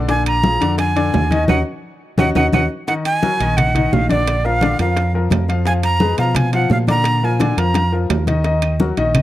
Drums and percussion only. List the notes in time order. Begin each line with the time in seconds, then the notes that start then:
0.09 high bongo, high conga, high timbale
0.26 high bongo, high conga, high timbale, claves
0.43 high bongo, high conga, low timbale
0.61 high bongo, high conga, high timbale
0.78 high bongo, high conga, high timbale, claves
0.96 high conga, high timbale
1.13 high bongo, low bongo, high conga, low timbale
1.31 high bongo, high conga, high timbale
1.48 low bongo, high conga, high timbale, claves
2.18 low bongo, high conga, high timbale, claves
2.35 low bongo, high conga, high timbale, claves
2.53 low bongo, high conga, high timbale, claves
2.88 high bongo, high conga, high timbale
3.05 high bongo, high conga, high timbale
3.23 high bongo, high conga, low timbale
3.40 high bongo, high conga, high timbale
3.58 high bongo, high conga, low conga, high timbale
3.75 high conga, low conga, high timbale
3.93 high bongo, low bongo, low timbale
4.09 high bongo, high conga, high timbale
4.27 high bongo, high conga, high timbale
4.45 high bongo, high conga
4.61 high bongo, high conga, high timbale, low timbale
4.79 high bongo, high conga, high timbale
4.96 high bongo, high conga, high timbale
5.13 high conga
5.30 high bongo, low bongo, high conga, high timbale, low timbale
5.48 high bongo, high conga, high timbale
5.66 high bongo, high conga, high timbale
5.83 high bongo, high conga, high timbale
6.00 high bongo, high conga, low timbale
6.17 high bongo, high conga, high timbale
6.35 high bongo, high conga, low conga, high timbale
6.53 high conga, high timbale
6.70 high bongo, low bongo, low timbale
6.87 high bongo, high conga, high timbale
7.04 high bongo, high conga, high timbale
7.22 high bongo, high conga
7.40 high bongo, high conga, high timbale, low timbale
7.57 high bongo, high conga, high timbale
7.74 high bongo, high timbale
7.93 high conga
8.10 high conga, high timbale, low timbale
8.27 low bongo, high conga, high timbale
8.44 high bongo, high conga, high timbale
8.62 high bongo, high conga, high timbale, claves
8.80 high bongo, high conga, low timbale
8.97 high bongo, high conga, high timbale
9.15 high bongo, high conga, low conga, high timbale, claves